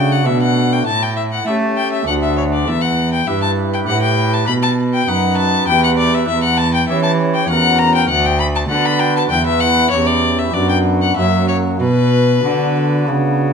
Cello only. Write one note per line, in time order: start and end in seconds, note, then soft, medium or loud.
0.00 0.27 C#3 medium
0.26 0.86 B2 medium
0.87 1.46 A2 medium
1.47 2.06 A3 medium
2.07 2.69 D2 medium
2.68 3.28 E2 medium
3.28 3.88 G2 medium
3.88 4.50 A2 medium
4.48 5.08 B2 medium
5.08 5.67 F#2 medium
5.68 6.28 E2 medium
6.29 6.88 E2 medium
6.90 7.48 E3 medium
7.49 8.08 E2 medium
8.09 8.69 D2 medium
8.70 9.30 D3 medium
9.31 9.91 E2 medium
9.92 10.53 E2 medium
10.54 11.15 F#2 medium
11.16 11.82 F#2 medium
11.80 12.43 B2 medium
12.44 13.09 D3 medium
13.07 13.53 C#3 medium